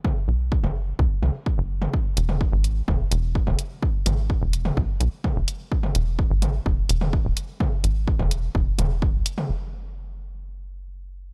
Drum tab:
HH |----------------|--x---x---x---x-|--x---x---x---x-|--x---x---x---x-|
T2 |o----o----o----o|---o----o----o--|--o----o----o---|-o----o----o----|
BD |o---o---o---o---|o---o---o---o---|o---o---o---o---|o---o---o---o---|

HH |--x---x---x---x-|----------------|
T2 |o----o----o----o|----------------|
BD |o---o---o---o---|----------------|